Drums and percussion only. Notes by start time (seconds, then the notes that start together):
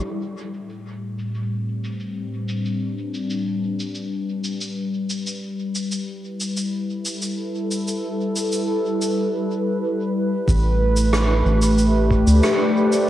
0.04 cabasa
0.54 cabasa
0.69 cabasa
1.19 cabasa
1.35 cabasa
1.84 cabasa
2.00 cabasa
2.48 cabasa
2.65 cabasa
3.14 cabasa
3.30 cabasa
3.80 cabasa
3.95 cabasa
4.44 cabasa
4.61 cabasa
5.10 cabasa
5.27 cabasa
5.75 cabasa
5.92 cabasa
6.40 cabasa
6.57 cabasa
7.05 cabasa
7.22 cabasa
7.71 cabasa
7.88 cabasa
8.36 cabasa
8.52 cabasa
9.02 cabasa
10.48 kick, cabasa
10.97 cabasa
11.13 cross-stick, cabasa
11.62 cabasa
11.78 cabasa
12.11 kick
12.28 cabasa
12.43 cross-stick, cabasa
12.92 cabasa